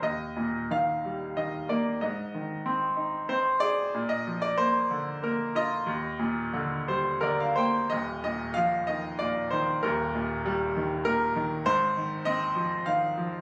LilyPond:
<<
  \new Staff \with { instrumentName = "Grand piano" } { \time 3/4 \key ees \major \tempo 4 = 93 << { r2. | r2. | r2. | r4. c''8 d''16 f''16 g''8 |
r2. | r2. | r2. | } \\ { ees''4 f''4 ees''8 d''8 | ees''4. r8 c''8 d''8~ | d''16 ees''8 d''16 c''4 bes'8 ees''8~ | ees''2 bes'8 c''8 |
ees''8 ees''8 f''8 ees''8 d''8 c''8 | bes'4. r8 bes'4 | c''4 ees''4 f''4 | } >> }
  \new Staff \with { instrumentName = "Grand piano" } { \clef bass \time 3/4 \key ees \major ees,8 bes,8 ees8 g8 ees8 bes8 | aes,8 ees8 c'8 ees'8 c'8 aes'8 | bes,8 f8 bes8 d8 bes8 f'8 | ees,8 bes,8 d8 g8 d8 bes8 |
<ees,, ees,>8 bes,8 f8 ees8 bes,8 ees8 | <ees,, ees,>8 bes,8 g8 ees8 bes,8 ees8 | <aes,, aes,>8 ees8 c'8 f8 ees8 f8 | }
>>